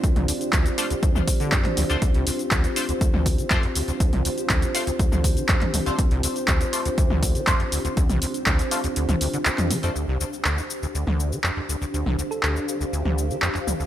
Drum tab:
HH |xxoxxxoxx-oxxxox|xxoxxxoxx-oxxxox|xxoxxxoxx-oxxxox|xxoxxxoxx-oxxxox|
SH |x-xxxxxxxxxxx-xx|x-xxxxxxx-xxx-xx|x-xxxxxxxxxxx-xx|x-xxxxxxx-xxx-xx|
CP |----x-------xx--|----x-------x---|----x-------xx--|----x-------x---|
T2 |-o-------o---oo-|---------o------|-o-------o---oo-|---------o------|
BD |o---o---o-o-o---|o---o---o-o-o---|o---o---o-o-o---|o---o---o-o-o---|

HH |xxoxxxoxxxoxxxox|----------------|----------------|
SH |xxxxxxxxxxxxxxxx|x-xxxxxxx-xxx-xx|x-xxxxxxx-xxxxxx|
CP |----x-------xx--|----x-------x---|----x-------xx--|
T2 |-o-------o---oo-|---------o------|-o-------o----o-|
BD |o---o-----------|----------------|----------------|